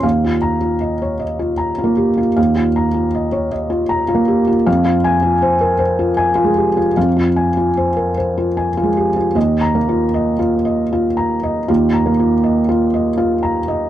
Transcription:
<<
  \new Staff \with { instrumentName = "Felt piano" } { \time 3/4 \key ees \mixolydian \tempo 4 = 78 << { r8 bes''8 r2 | r2. | r8 aes''8 r2 | r2. |
\tuplet 3/2 { r8 bes''4 } r2 | r2. | } \\ { f''16 f'8 f'16 ees''16 des''16 ees''16 f'16 bes''16 f'16 g'16 f'16 | f''16 f'16 bes''16 f'16 ees''16 des''16 ees''16 f'16 bes''16 f'16 g'16 f'16 | f''16 f'8 f'16 c''16 bes'16 c''16 f'16 aes''16 f'16 g'16 f'16 | f''16 f'16 aes''16 f'16 c''16 bes'16 c''16 f'16 aes''16 f'16 g'16 f'16 |
\tuplet 3/2 { ees''4 f'8 ees''8 f'8 ees''8 f'8 bes''8 ees''8 } | \tuplet 3/2 { f'8 bes''8 f'8 ees''8 f'8 ees''8 f'8 bes''8 ees''8 } | } >> }
  \new Staff \with { instrumentName = "Felt piano" } { \clef bass \time 3/4 \key ees \mixolydian ees,2~ \tuplet 3/2 { ees,8 bes4 } | ees,2~ \tuplet 3/2 { ees,8 bes4 } | f,2~ \tuplet 3/2 { f,8 aes4 } | f,2~ \tuplet 3/2 { f,8 aes4 } |
ees,8 bes4 r4. | ees,8 bes4 r4. | }
>>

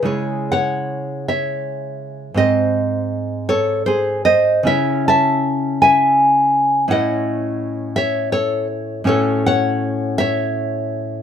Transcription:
\new Staff \with { instrumentName = "Nylon-string guitar" } { \time 3/4 \key cis \minor \tempo 4 = 82 << { <gis' cis''>8 <cis'' fis''>4 <cis'' e''>4. | <bis' dis''>4. <a' cis''>8 <gis' bis'>8 <bis' dis''>8 | <cis'' e''>8 <e'' a''>4 <e'' gis''>4. | <dis'' fis''>4. <cis'' e''>8 <a' cis''>8 r8 |
\key fis \dorian <a' cis''>8 <cis'' fis''>4 <cis'' e''>4. | } \\ { <cis gis e'>2. | <gis, bis fis'>2. | <cis cis' e'>2. | <a, cis' e'>2. |
<a, cis' fis'>2. | } >> }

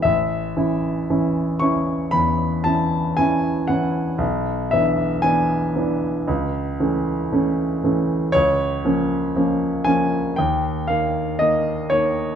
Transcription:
<<
  \new Staff \with { instrumentName = "Grand piano" } { \time 4/4 \key a \lydian \tempo 4 = 58 e''4. cis'''8 b''8 a''8 gis''8 fis''8~ | fis''8 e''8 gis''2. | \key bes \dorian des''4. aes''8 g''8 f''8 ees''8 des''8 | }
  \new Staff \with { instrumentName = "Grand piano" } { \time 4/4 \key a \lydian a,,8 <e cis' e'>8 <e cis' e'>8 <e cis' e'>8 e,8 <e cis' e'>8 <e cis' e'>8 <e cis' e'>8 | b,,8 <e b d'>8 <e b d'>8 <e b d'>8 cis,8 <e a cis'>8 <e a cis'>8 <e a cis'>8 | \key bes \dorian des,8 <f bes des'>8 <f bes des'>8 <f bes des'>8 ees,8 <ees bes>8 <ees bes>8 <ees bes>8 | }
>>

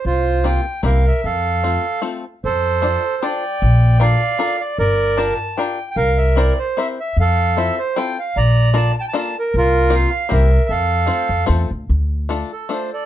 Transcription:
<<
  \new Staff \with { instrumentName = "Accordion" } { \time 3/4 \key f \major \tempo 4 = 152 << { c''4 g''4 f''8 e''8 | f''2 r4 | c''2 g''4~ | g''4 f''4. d''8 |
d''4 a''4 g''8.~ g''32 g''32 | f''8 e''8 d''8 c''8 e''8 e''8 | f''4 e''8 c''8 g''8 f''8 | bes''4 a''8 a''32 g''32 a''16 a''8 bes'8 |
bes'4 f''4 e''4 | f''2 r4 | \key d \minor r4. a'8 c''8 d''8 | } \\ { f'4. r8 bes'4 | a'2 r4 | a'2 d''4~ | d''4 d''4. r8 |
bes'4. r4. | bes'4. r4. | a'4. r4. | d''4. r4. |
f'4. r8 bes'4 | a'2 r4 | r2 r8 a'8 | } >> }
  \new Staff \with { instrumentName = "Five-string banjo" } { \time 3/4 \key f \major r4 <bes c' f' g'>8 r8 <bes c' e' g'>8 r8 | r4 <a c' f' a'>8 r8 <a c' f' a'>8 r8 | r4 <d' f' a' c'' d''>8 r8 <d' f' a' c'' d''>8 r8 | r4 <d' f' a' bes' d''>8 r8 <d' f' a' bes' d''>8 r8 |
r4 <d' f' g' bes' d''>8 r8 <d' f' g' bes' d''>8 r8 | r4 <c' e' g' bes' c''>8 r8 <c' e' g' bes' c''>8 r8 | r4 <c' e' f' a' c''>8 r8 <c' e' f' a' c''>8 r8 | r4 <bes d' f' a' bes'>8 r8 <bes d' f' a' bes'>8 r8 |
r4 <bes c' f' g' bes'>8 r8 <bes c' e' g' bes'>8 r8 | r4 <a c' f' a' c''>8 r8 <a c' f' a' c''>8 r8 | \key d \minor r4 <a d' f' a'>8 r8 <a d' f' a'>8 r8 | }
  \new Staff \with { instrumentName = "Upright bass" } { \clef bass \time 3/4 \key f \major c,2 c,4 | f,2 r4 | f,2 r4 | bes,,2 r4 |
g,,2 r4 | c,2 r4 | f,2 r4 | bes,,2 r4 |
c,2 c,4 | f,4. f,8 e,8 d,8 | \key d \minor d,2 r4 | }
>>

